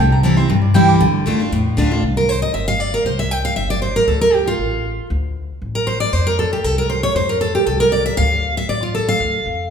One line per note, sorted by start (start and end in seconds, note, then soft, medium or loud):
0.00 0.37 C2 medium
0.00 0.47 C3 loud
0.00 0.11 G5 medium
0.12 0.23 A#5 loud
0.23 0.37 E3 medium
0.23 0.37 G3 loud
0.23 0.38 C4 medium
0.23 0.36 E4 medium
0.23 0.36 A5 medium
0.37 0.50 C4 soft
0.37 0.49 E4 medium
0.37 0.48 C6 loud
0.48 0.71 A#1 medium
0.48 0.98 G2 medium
0.48 0.62 A#5 medium
0.62 0.74 D5 medium
0.74 0.97 C2 medium
0.74 0.99 E3 loud
0.74 0.99 G3 loud
0.74 1.00 C4 medium
0.74 1.00 E4 loud
0.74 0.88 G5 loud
0.88 1.12 D6 loud
1.00 1.20 D2 medium
1.00 1.25 D3 loud
1.26 1.48 F2 medium
1.26 1.39 D3 medium
1.26 1.40 A3 medium
1.26 1.40 D4 loud
1.26 1.39 F4 loud
1.40 1.52 D4 soft
1.40 1.51 F4 medium
1.52 1.73 E2 medium
1.52 2.01 A2 medium
1.77 1.99 D2 medium
1.77 1.90 D3 loud
1.77 1.91 A3 medium
1.77 1.91 D4 loud
1.77 1.90 F4 loud
1.91 2.03 D4 soft
1.91 2.02 F4 medium
2.02 2.42 C2 loud
2.17 2.29 A#4 medium
2.29 2.42 C5 medium
2.42 2.53 D#5 medium
2.54 2.93 G1 medium
2.54 2.67 E5 medium
2.68 2.80 F5 loud
2.80 2.93 D5 medium
2.94 3.05 A#4 medium
3.05 3.45 C2 loud
3.05 3.19 C5 medium
3.19 3.31 E5 medium
3.31 3.44 G5 loud
3.45 3.56 F5 loud
3.56 3.96 G1 medium
3.56 3.70 E5 medium
3.70 3.81 D5 loud
3.82 3.96 C5 medium
3.96 4.07 A#4 medium
4.07 4.47 D2 loud
4.07 4.21 A4 medium
4.21 4.34 A#4 medium
4.34 4.47 G4 medium
4.48 5.07 F4 medium
4.59 4.98 A1 medium
5.10 5.50 D2 loud
5.62 6.01 A1 medium
5.75 5.87 A#4 loud
5.87 6.00 C5 medium
6.00 6.13 D5 loud
6.13 6.52 F2 medium
6.13 6.26 C5 medium
6.27 6.38 A#4 loud
6.39 6.52 A4 medium
6.53 6.64 G4 medium
6.64 7.03 C2 medium
6.64 6.78 A4 medium
6.78 6.90 A#4 loud
6.90 7.03 C5 medium
7.03 7.15 C#5 loud
7.15 7.55 F2 loud
7.15 7.29 C5 medium
7.29 7.40 A#4 medium
7.41 7.54 A4 medium
7.55 7.66 G4 medium
7.66 8.06 C2 medium
7.66 7.80 A4 medium
7.80 7.92 A#4 loud
7.92 8.05 D5 medium
8.06 8.17 E5 loud
8.17 8.57 D2 loud
8.17 8.54 F5 loud
8.57 8.69 E5 medium
8.69 9.08 A1 medium
8.69 8.83 D5 medium
8.83 8.94 F4 medium
8.95 9.08 A4 medium
9.09 9.68 F5 loud
9.20 9.40 D2 medium
9.46 9.68 F2 medium